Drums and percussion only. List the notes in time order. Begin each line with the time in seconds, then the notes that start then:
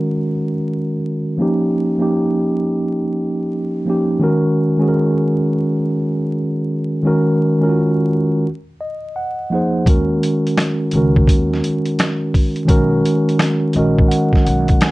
9.86 kick, closed hi-hat
10.23 closed hi-hat
10.47 closed hi-hat
10.57 finger snap, snare, closed hi-hat
10.91 closed hi-hat
11.16 kick
11.27 kick, closed hi-hat
11.54 snare
11.64 closed hi-hat
11.86 closed hi-hat
11.99 finger snap, snare, closed hi-hat
12.34 kick, open hi-hat
12.56 closed hi-hat
12.68 kick, closed hi-hat
13.05 closed hi-hat
13.29 closed hi-hat
13.39 finger snap, snare, closed hi-hat
13.73 closed hi-hat
13.99 kick
14.11 closed hi-hat
14.33 kick, snare
14.46 closed hi-hat
14.68 kick, closed hi-hat
14.81 finger snap, snare, closed hi-hat